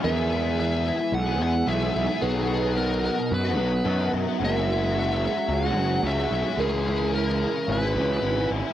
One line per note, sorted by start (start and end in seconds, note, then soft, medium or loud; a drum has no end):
0.03 0.56 E2 medium
0.03 0.90 E2 medium
0.03 0.57 B2 medium
0.03 0.30 E3 medium
0.03 0.31 G#3 medium
0.03 4.37 B3 medium
0.03 0.33 B3 medium
0.03 0.43 E4 loud
0.03 0.33 G#4 medium
0.03 0.58 A#4 medium
0.03 2.20 E5 medium
0.03 0.59 E5 loud
0.03 2.20 G#5 medium
0.03 2.20 E6 medium
0.31 0.58 E3 medium
0.31 0.59 G#3 medium
0.31 0.59 B3 medium
0.31 0.59 G#4 medium
0.43 0.58 B3 medium
0.43 0.57 E4 medium
0.43 0.58 G#4 medium
0.57 0.98 E2 medium
0.57 0.99 B2 medium
0.57 0.73 E3 medium
0.57 0.72 G#3 medium
0.57 0.72 B3 loud
0.57 0.86 E4 loud
0.57 0.69 G#4 medium
0.57 1.15 E5 medium
0.70 0.83 E3 medium
0.70 0.84 G#3 medium
0.70 0.87 B3 medium
0.70 0.87 G#4 medium
0.84 1.00 E3 medium
0.84 1.00 G#3 medium
0.84 0.98 B3 medium
0.84 0.99 E4 medium
0.84 1.41 G#4 medium
0.84 0.97 G#4 medium
0.98 1.28 E3 medium
0.98 1.27 G#3 medium
0.98 1.26 B3 medium
0.98 1.24 G#4 medium
0.98 muted overdriven electric guitar stroke soft
1.12 1.40 B1 medium
1.12 1.41 F#5 loud
1.26 1.38 E3 medium
1.26 1.40 G#3 medium
1.26 1.41 B3 medium
1.26 1.40 E4 medium
1.26 1.41 G#4 medium
1.39 1.61 E2 medium
1.39 1.66 E3 medium
1.39 1.67 G#3 medium
1.39 1.67 B3 medium
1.39 1.53 E4 medium
1.39 1.95 F#4 medium
1.39 1.68 G#4 medium
1.39 1.70 F#5 loud
1.54 muted overdriven electric guitar stroke soft
1.66 1.89 B1 loud
1.66 2.08 E2 medium
1.66 2.08 B2 medium
1.66 1.82 E3 medium
1.66 1.81 G#3 medium
1.66 1.80 B3 medium
1.66 1.80 E4 medium
1.66 1.79 G#4 loud
1.66 2.24 E5 medium
1.80 1.93 E3 medium
1.80 1.93 G#3 medium
1.80 1.93 B3 medium
1.80 2.08 E4 medium
1.80 1.94 G#4 medium
1.94 2.06 B1 medium
1.94 2.21 E4 medium
1.94 muted clean electric guitar stroke soft
2.07 2.22 E3 medium
2.07 2.21 G#3 medium
2.07 2.21 B3 medium
2.07 2.21 E4 medium
2.07 2.20 G#4 medium
2.21 3.08 B1 medium
2.21 2.74 B2 medium
2.21 2.75 D#3 medium
2.21 2.47 F#3 loud
2.21 2.48 B3 medium
2.21 2.49 D#4 loud
2.21 2.51 F#4 loud
2.21 2.47 G#4 medium
2.21 2.77 B4 medium
2.21 4.39 D#5 medium
2.21 6.55 F#5 medium
2.21 4.38 D#6 medium
2.48 2.76 F#3 medium
2.48 2.76 B3 medium
2.48 2.77 D#4 medium
2.48 2.78 F#4 medium
2.48 2.76 G#4 medium
2.62 2.76 F#3 medium
2.62 2.76 B3 medium
2.62 2.78 F#4 medium
2.75 3.17 B2 medium
2.75 3.02 D#3 medium
2.75 3.02 F#3 loud
2.75 2.91 B3 loud
2.75 2.89 D#4 loud
2.75 2.88 F#4 medium
2.75 3.04 A#4 medium
2.89 3.02 B3 medium
2.89 3.03 D#4 medium
2.89 3.05 F#4 medium
3.03 3.18 D#3 medium
3.03 3.44 F#3 medium
3.03 3.20 B3 medium
3.03 3.18 D#4 medium
3.03 3.16 F#4 medium
3.03 3.59 G#4 medium
3.03 3.33 A#4 medium
3.17 3.46 B3 medium
3.17 3.45 D#4 medium
3.17 3.43 F#4 medium
3.17 muted overdriven electric guitar stroke soft
3.31 3.58 F#2 medium
3.31 4.11 B4 medium
3.44 3.58 F#3 medium
3.44 3.57 B3 medium
3.44 3.59 D#4 medium
3.44 3.60 F#4 medium
3.58 3.80 B1 medium
3.58 3.71 D#3 medium
3.58 3.85 F#3 medium
3.58 3.86 B3 medium
3.58 3.86 D#4 medium
3.58 4.14 F#4 medium
3.58 3.87 F#4 medium
3.72 muted overdriven electric guitar stroke medium
3.85 4.07 F#2 loud
3.85 4.27 B2 medium
3.85 4.27 D#3 loud
3.85 4.12 F#3 medium
3.85 4.00 B3 loud
3.85 3.99 D#4 medium
3.85 3.97 F#4 medium
3.98 4.28 F#3 medium
3.98 4.27 B3 medium
3.98 4.12 D#4 medium
3.98 4.12 F#4 medium
4.13 4.24 F#2 medium
4.13 4.41 E4 medium
4.13 muted clean electric guitar stroke soft
4.26 4.37 F#3 medium
4.26 4.41 B3 medium
4.26 4.40 D#4 medium
4.26 4.39 F#4 medium
4.40 5.26 F#1 medium
4.40 4.65 F#3 medium
4.40 4.67 G#3 medium
4.40 4.69 C#4 medium
4.40 4.69 F#4 loud
4.40 6.58 G#4 medium
4.40 4.96 A#4 medium
4.40 8.73 C#5 medium
4.40 6.58 C#6 medium
4.45 4.98 E5 loud
4.66 4.92 F#3 medium
4.66 4.95 G#3 medium
4.66 4.96 C#4 medium
4.66 4.96 F#4 medium
4.81 4.96 G#3 medium
4.81 4.96 C#4 medium
4.81 4.96 F#4 medium
4.94 5.21 F#3 medium
4.94 5.11 G#3 loud
4.94 5.09 C#4 loud
4.94 5.07 F#4 loud
5.00 5.54 E5 loud
5.08 5.23 G#3 medium
5.08 5.24 C#4 medium
5.08 5.24 F#4 medium
5.22 5.64 F#3 medium
5.22 5.39 G#3 medium
5.22 5.37 C#4 medium
5.22 5.35 F#4 medium
5.22 5.80 G#4 medium
5.36 5.66 G#3 medium
5.36 5.65 C#4 medium
5.36 5.62 F#4 medium
5.36 muted overdriven electric guitar stroke soft
5.49 5.76 C#2 medium
5.54 6.08 F#5 loud
5.63 5.78 G#3 medium
5.63 5.79 C#4 medium
5.63 5.80 F#4 medium
5.76 5.98 F#1 medium
5.76 6.03 F#3 medium
5.76 6.04 G#3 medium
5.76 6.05 C#4 medium
5.76 6.32 F#4 medium
5.81 6.06 F#4 medium
5.93 muted overdriven electric guitar stroke soft
6.03 6.25 C#2 loud
6.03 6.31 F#3 medium
6.03 6.20 G#3 medium
6.03 6.18 C#4 loud
6.03 6.62 E5 medium
6.07 6.16 F#4 loud
6.17 6.32 G#3 medium
6.17 6.32 C#4 medium
6.17 6.32 F#4 medium
6.31 6.42 B1 medium
6.31 6.59 E4 medium
6.31 muted clean electric guitar stroke soft
6.45 6.60 G#3 medium
6.45 6.59 C#4 medium
6.45 6.58 F#4 medium
6.57 7.44 C#2 medium
6.57 7.12 C#3 medium
6.57 6.86 E3 medium
6.57 6.87 G#3 medium
6.57 6.88 G#4 medium
6.57 7.14 A#4 medium
6.57 8.73 E5 medium
6.57 8.73 G#5 medium
6.57 8.73 E6 medium
6.61 6.87 C#4 medium
6.61 6.89 E4 medium
6.86 7.14 E3 medium
6.86 7.15 G#3 medium
6.86 7.15 C#4 medium
6.86 7.17 E4 medium
6.86 7.14 G#4 medium
7.01 7.16 G#3 medium
7.01 7.15 C#4 medium
7.01 7.17 E4 medium
7.14 7.55 C#3 medium
7.14 7.41 E3 medium
7.14 7.29 G#3 medium
7.14 7.27 C#4 loud
7.14 7.27 E4 loud
7.14 7.71 A#4 medium
7.27 7.42 G#3 medium
7.27 7.42 C#4 medium
7.27 7.44 E4 medium
7.41 7.83 C#3 medium
7.41 7.83 E3 medium
7.41 7.58 G#3 medium
7.41 7.56 C#4 medium
7.41 7.54 E4 medium
7.41 7.96 G#4 medium
7.54 7.83 C#4 medium
7.54 7.82 E4 medium
7.54 muted overdriven electric guitar stroke medium
7.59 7.85 G#3 medium
7.68 7.97 G#1 medium
7.72 8.49 B4 medium
7.83 7.97 G#3 medium
7.83 7.98 C#4 medium
7.83 7.99 E4 medium
7.95 8.17 C#2 medium
7.95 8.20 C#3 medium
7.95 8.24 E3 medium
7.95 8.24 G#3 medium
7.95 8.25 C#4 medium
7.95 8.52 F#4 medium
8.00 8.26 E4 medium
8.10 muted overdriven electric guitar stroke soft
8.23 8.45 G#1 medium
8.23 8.65 C#3 medium
8.23 8.51 E3 medium
8.23 8.40 G#3 loud
8.23 8.38 C#4 loud
8.23 8.36 E4 medium
8.37 8.51 G#3 medium
8.37 8.51 C#4 medium
8.37 8.51 E4 medium
8.50 8.61 G#1 medium
8.50 8.73 E4 medium
8.50 muted clean electric guitar stroke soft
8.64 8.73 G#3 medium
8.64 8.73 C#4 medium
8.64 8.73 E4 medium